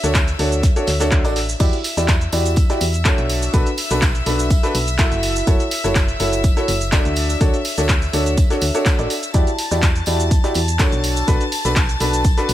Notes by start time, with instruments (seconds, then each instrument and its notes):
Already playing: string section E5 E6
0.04 fm bass D2, grand piano D4 F#4 A4 C#5, snare, closed hi-hat, cabasa
0.15 kick, snare, clap, closed hi-hat, tambourine, cabasa
0.28 closed hi-hat, cabasa
0.39 fm bass D2, grand piano D4 F#4 A4 C#5, open hi-hat, tambourine
0.52 closed hi-hat, cabasa
0.63 kick, snare, closed hi-hat, tambourine, cabasa
0.76 grand piano D4 F#4 A4 C#5, closed hi-hat, cabasa
0.87 fm bass D2, snare, open hi-hat, tambourine
1.00 grand piano D4 F#4 A4 C#5, snare, closed hi-hat, tambourine, cabasa
1.11 kick, clap, closed hi-hat, cabasa
1.25 fm bass A1, grand piano D4 F#4 A4 D5, closed hi-hat, tambourine, cabasa
1.36 snare, open hi-hat, tambourine
1.49 cabasa
1.60 fm bass E2, grand piano E4 F#4 G4 D5, string section E5 E6, kick, closed hi-hat, tambourine, crash, cabasa
1.73 closed hi-hat, cabasa
1.84 snare, open hi-hat, tambourine
1.97 fm bass E2, grand piano E4 F#4 G4 D5, snare, closed hi-hat, tambourine, cabasa
2.08 kick, snare, clap, closed hi-hat, tambourine, cabasa
2.21 closed hi-hat, cabasa
2.32 fm bass E2, grand piano E4 F#4 G4 D5, open hi-hat, tambourine
2.46 closed hi-hat, tambourine, cabasa
2.56 kick, closed hi-hat, tambourine, cabasa
2.70 grand piano E4 F#4 G4 D5, snare, closed hi-hat, cabasa
2.81 fm bass E2, open hi-hat, tambourine
2.93 closed hi-hat, tambourine, cabasa
3.05 grand piano D4 F#4 A4 C#5, kick, snare, clap, closed hi-hat, tambourine, cabasa
3.18 fm bass B1, closed hi-hat, cabasa
3.29 open hi-hat, tambourine
3.42 tambourine, cabasa
3.54 fm bass B1, grand piano D4 F#4 A4 B4, kick, closed hi-hat, tambourine, cabasa
3.67 closed hi-hat, cabasa
3.78 open hi-hat, tambourine
3.90 fm bass B1, grand piano D4 F#4 A4 B4, snare, closed hi-hat, tambourine, cabasa
4.02 kick, snare, clap, closed hi-hat, tambourine, cabasa
4.15 closed hi-hat, cabasa
4.26 fm bass B1, grand piano D4 F#4 A4 B4, open hi-hat, tambourine
4.39 closed hi-hat, tambourine, cabasa
4.50 kick, closed hi-hat, tambourine, cabasa
4.63 grand piano D4 F#4 A4 B4, snare, closed hi-hat, cabasa
4.75 fm bass B1, open hi-hat, tambourine
4.88 closed hi-hat, tambourine, cabasa
4.98 grand piano E4 F#4 A4 E5, kick, snare, clap, closed hi-hat, tambourine, cabasa
5.12 fm bass F#1, closed hi-hat, cabasa
5.23 open hi-hat, tambourine
5.36 tambourine, cabasa
5.47 fm bass F#1, grand piano E4 F#4 A4 C#5, kick, closed hi-hat, tambourine, cabasa
5.60 closed hi-hat, cabasa
5.71 snare, open hi-hat, tambourine
5.84 fm bass F#1, grand piano E4 F#4 A4 C#5, snare, closed hi-hat, tambourine, cabasa
5.95 kick, snare, clap, closed hi-hat, tambourine, cabasa
6.08 closed hi-hat, cabasa
6.20 fm bass F#1, grand piano E4 F#4 A4 C#5, open hi-hat, tambourine
6.33 closed hi-hat, tambourine, cabasa
6.44 kick, closed hi-hat, tambourine, cabasa
6.57 grand piano E4 F#4 A4 C#5, snare, closed hi-hat, cabasa
6.68 fm bass F#1, open hi-hat, tambourine
6.81 closed hi-hat, tambourine, cabasa
6.92 grand piano D4 F#4 A4 D5, kick, snare, clap, closed hi-hat, tambourine, cabasa
7.05 fm bass D2, closed hi-hat, cabasa
7.16 open hi-hat, tambourine
7.29 tambourine, cabasa
7.41 fm bass D2, grand piano D4 F#4 A4 C#5, kick, closed hi-hat, tambourine, cabasa
7.54 closed hi-hat, cabasa
7.65 open hi-hat, tambourine
7.77 fm bass D2, grand piano D4 F#4 A4 C#5, snare, closed hi-hat, tambourine, cabasa
7.89 kick, snare, clap, closed hi-hat, tambourine, cabasa
8.02 closed hi-hat, cabasa
8.13 fm bass D2, grand piano D4 F#4 A4 C#5, open hi-hat, tambourine
8.26 closed hi-hat, tambourine, cabasa
8.37 kick, closed hi-hat, tambourine, cabasa
8.50 grand piano D4 F#4 A4 C#5, snare, closed hi-hat, cabasa
8.61 fm bass D2, open hi-hat, tambourine
8.75 grand piano D4 F#4 A4 C#5, closed hi-hat, tambourine, cabasa
8.86 kick, snare, clap, closed hi-hat, tambourine, cabasa
8.99 fm bass A1, grand piano D4 F#4 A4 D5, closed hi-hat, cabasa
9.10 open hi-hat, tambourine
9.22 closed hi-hat, tambourine, cabasa
9.34 fm bass E2, grand piano E4 F#4 G4 D5, string section A5 A6, kick, closed hi-hat, tambourine, cabasa
9.47 closed hi-hat, cabasa
9.58 snare, open hi-hat, tambourine
9.71 fm bass E2, grand piano E4 F#4 G4 D5, snare, closed hi-hat, tambourine, cabasa
9.82 kick, snare, clap, closed hi-hat, tambourine, cabasa
9.96 closed hi-hat, cabasa
10.06 fm bass E2, grand piano E4 F#4 G4 D5, open hi-hat, tambourine
10.20 closed hi-hat, tambourine, cabasa
10.31 kick, closed hi-hat, tambourine, cabasa
10.44 grand piano E4 F#4 G4 D5, snare, closed hi-hat, cabasa
10.54 fm bass E2, open hi-hat, tambourine
10.68 closed hi-hat, tambourine, cabasa
10.79 grand piano D4 F#4 A4 C#5, kick, snare, clap, closed hi-hat, tambourine, cabasa
10.92 fm bass B1, closed hi-hat, cabasa
11.04 open hi-hat, tambourine
11.17 tambourine, cabasa
11.28 fm bass B1, grand piano D4 F#4 A4 B4, kick, closed hi-hat, tambourine, cabasa
11.41 closed hi-hat, cabasa
11.52 open hi-hat, tambourine
11.65 fm bass B1, grand piano D4 F#4 A4 B4, snare, closed hi-hat, tambourine, cabasa
11.76 kick, snare, clap, closed hi-hat, tambourine, cabasa
11.89 closed hi-hat, cabasa
12.00 fm bass B1, grand piano D4 F#4 A4 B4, open hi-hat, tambourine
12.13 closed hi-hat, tambourine, cabasa
12.24 kick, closed hi-hat, tambourine, cabasa
12.38 grand piano D4 F#4 A4 B4, snare, closed hi-hat, cabasa
12.49 fm bass B1, open hi-hat, tambourine